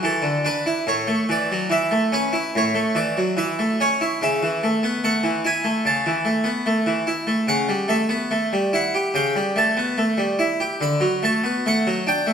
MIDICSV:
0, 0, Header, 1, 2, 480
1, 0, Start_track
1, 0, Tempo, 840336
1, 491, Time_signature, 4, 2, 24, 8
1, 2406, Tempo, 825309
1, 7128, End_track
2, 0, Start_track
2, 0, Title_t, "Harpsichord"
2, 0, Program_c, 0, 6
2, 17, Note_on_c, 0, 52, 35
2, 27, Note_on_c, 0, 69, 63
2, 125, Note_on_c, 0, 50, 33
2, 139, Note_off_c, 0, 52, 0
2, 254, Note_off_c, 0, 50, 0
2, 255, Note_on_c, 0, 62, 35
2, 259, Note_off_c, 0, 69, 0
2, 262, Note_on_c, 0, 71, 65
2, 378, Note_on_c, 0, 64, 35
2, 379, Note_off_c, 0, 62, 0
2, 462, Note_off_c, 0, 71, 0
2, 495, Note_off_c, 0, 64, 0
2, 497, Note_on_c, 0, 45, 45
2, 504, Note_on_c, 0, 73, 66
2, 611, Note_off_c, 0, 45, 0
2, 614, Note_on_c, 0, 57, 35
2, 704, Note_off_c, 0, 73, 0
2, 737, Note_on_c, 0, 52, 36
2, 739, Note_off_c, 0, 57, 0
2, 750, Note_on_c, 0, 74, 66
2, 861, Note_off_c, 0, 52, 0
2, 866, Note_on_c, 0, 54, 31
2, 946, Note_off_c, 0, 74, 0
2, 969, Note_on_c, 0, 52, 37
2, 979, Note_off_c, 0, 54, 0
2, 980, Note_on_c, 0, 76, 70
2, 1092, Note_on_c, 0, 57, 35
2, 1096, Note_off_c, 0, 52, 0
2, 1213, Note_on_c, 0, 61, 36
2, 1215, Note_off_c, 0, 76, 0
2, 1218, Note_off_c, 0, 57, 0
2, 1220, Note_on_c, 0, 71, 61
2, 1330, Note_on_c, 0, 64, 35
2, 1339, Note_off_c, 0, 61, 0
2, 1421, Note_off_c, 0, 71, 0
2, 1457, Note_off_c, 0, 64, 0
2, 1459, Note_on_c, 0, 45, 40
2, 1470, Note_on_c, 0, 73, 58
2, 1569, Note_on_c, 0, 57, 34
2, 1572, Note_off_c, 0, 45, 0
2, 1685, Note_on_c, 0, 52, 36
2, 1692, Note_on_c, 0, 74, 64
2, 1696, Note_off_c, 0, 57, 0
2, 1701, Note_off_c, 0, 73, 0
2, 1813, Note_off_c, 0, 52, 0
2, 1813, Note_on_c, 0, 54, 32
2, 1893, Note_off_c, 0, 74, 0
2, 1925, Note_on_c, 0, 52, 36
2, 1930, Note_off_c, 0, 54, 0
2, 1931, Note_on_c, 0, 76, 72
2, 2051, Note_off_c, 0, 52, 0
2, 2051, Note_on_c, 0, 57, 36
2, 2133, Note_off_c, 0, 76, 0
2, 2172, Note_on_c, 0, 61, 40
2, 2175, Note_off_c, 0, 57, 0
2, 2177, Note_on_c, 0, 73, 68
2, 2291, Note_on_c, 0, 64, 38
2, 2296, Note_off_c, 0, 61, 0
2, 2377, Note_off_c, 0, 73, 0
2, 2408, Note_on_c, 0, 49, 49
2, 2409, Note_off_c, 0, 64, 0
2, 2416, Note_on_c, 0, 76, 72
2, 2525, Note_off_c, 0, 49, 0
2, 2531, Note_on_c, 0, 52, 35
2, 2650, Note_on_c, 0, 57, 37
2, 2655, Note_off_c, 0, 52, 0
2, 2767, Note_on_c, 0, 59, 36
2, 2773, Note_off_c, 0, 57, 0
2, 2818, Note_off_c, 0, 76, 0
2, 2885, Note_off_c, 0, 59, 0
2, 2887, Note_on_c, 0, 57, 38
2, 2891, Note_on_c, 0, 78, 75
2, 3000, Note_on_c, 0, 52, 38
2, 3010, Note_off_c, 0, 57, 0
2, 3091, Note_off_c, 0, 78, 0
2, 3124, Note_on_c, 0, 64, 39
2, 3127, Note_off_c, 0, 52, 0
2, 3134, Note_on_c, 0, 80, 73
2, 3238, Note_on_c, 0, 57, 37
2, 3248, Note_off_c, 0, 64, 0
2, 3359, Note_on_c, 0, 49, 43
2, 3365, Note_off_c, 0, 57, 0
2, 3367, Note_off_c, 0, 80, 0
2, 3368, Note_on_c, 0, 81, 66
2, 3476, Note_off_c, 0, 49, 0
2, 3482, Note_on_c, 0, 52, 36
2, 3591, Note_on_c, 0, 57, 38
2, 3603, Note_off_c, 0, 81, 0
2, 3606, Note_off_c, 0, 52, 0
2, 3702, Note_on_c, 0, 59, 34
2, 3721, Note_off_c, 0, 57, 0
2, 3830, Note_off_c, 0, 59, 0
2, 3830, Note_on_c, 0, 57, 40
2, 3949, Note_on_c, 0, 52, 37
2, 3959, Note_off_c, 0, 57, 0
2, 4069, Note_on_c, 0, 64, 39
2, 4078, Note_off_c, 0, 52, 0
2, 4184, Note_on_c, 0, 57, 40
2, 4198, Note_off_c, 0, 64, 0
2, 4304, Note_on_c, 0, 49, 51
2, 4309, Note_off_c, 0, 57, 0
2, 4310, Note_on_c, 0, 78, 85
2, 4425, Note_off_c, 0, 49, 0
2, 4427, Note_on_c, 0, 55, 39
2, 4516, Note_off_c, 0, 78, 0
2, 4541, Note_on_c, 0, 57, 39
2, 4548, Note_on_c, 0, 76, 64
2, 4557, Note_off_c, 0, 55, 0
2, 4662, Note_on_c, 0, 59, 36
2, 4674, Note_off_c, 0, 57, 0
2, 4788, Note_off_c, 0, 59, 0
2, 4788, Note_on_c, 0, 57, 44
2, 4915, Note_on_c, 0, 55, 41
2, 4918, Note_off_c, 0, 57, 0
2, 5032, Note_off_c, 0, 76, 0
2, 5035, Note_on_c, 0, 64, 40
2, 5041, Note_off_c, 0, 55, 0
2, 5046, Note_on_c, 0, 78, 75
2, 5158, Note_on_c, 0, 67, 41
2, 5162, Note_off_c, 0, 64, 0
2, 5247, Note_off_c, 0, 78, 0
2, 5273, Note_on_c, 0, 49, 47
2, 5280, Note_on_c, 0, 79, 81
2, 5285, Note_off_c, 0, 67, 0
2, 5393, Note_off_c, 0, 49, 0
2, 5398, Note_on_c, 0, 55, 39
2, 5485, Note_off_c, 0, 79, 0
2, 5516, Note_on_c, 0, 57, 40
2, 5526, Note_off_c, 0, 55, 0
2, 5528, Note_on_c, 0, 81, 75
2, 5638, Note_on_c, 0, 59, 35
2, 5645, Note_off_c, 0, 57, 0
2, 5759, Note_on_c, 0, 57, 44
2, 5760, Note_off_c, 0, 59, 0
2, 5874, Note_on_c, 0, 55, 41
2, 5887, Note_off_c, 0, 57, 0
2, 5999, Note_on_c, 0, 64, 45
2, 6006, Note_off_c, 0, 55, 0
2, 6122, Note_on_c, 0, 67, 42
2, 6129, Note_off_c, 0, 64, 0
2, 6143, Note_off_c, 0, 81, 0
2, 6241, Note_on_c, 0, 50, 54
2, 6246, Note_off_c, 0, 67, 0
2, 6250, Note_on_c, 0, 83, 86
2, 6356, Note_on_c, 0, 54, 41
2, 6362, Note_off_c, 0, 50, 0
2, 6455, Note_off_c, 0, 83, 0
2, 6486, Note_on_c, 0, 57, 42
2, 6489, Note_off_c, 0, 54, 0
2, 6498, Note_on_c, 0, 81, 84
2, 6608, Note_on_c, 0, 59, 41
2, 6615, Note_off_c, 0, 57, 0
2, 6729, Note_off_c, 0, 59, 0
2, 6734, Note_off_c, 0, 81, 0
2, 6739, Note_on_c, 0, 57, 44
2, 6747, Note_on_c, 0, 78, 80
2, 6859, Note_on_c, 0, 54, 43
2, 6860, Note_off_c, 0, 57, 0
2, 6976, Note_on_c, 0, 62, 44
2, 6977, Note_off_c, 0, 78, 0
2, 6979, Note_off_c, 0, 54, 0
2, 6984, Note_on_c, 0, 79, 82
2, 7090, Note_on_c, 0, 57, 43
2, 7098, Note_off_c, 0, 62, 0
2, 7128, Note_off_c, 0, 57, 0
2, 7128, Note_off_c, 0, 79, 0
2, 7128, End_track
0, 0, End_of_file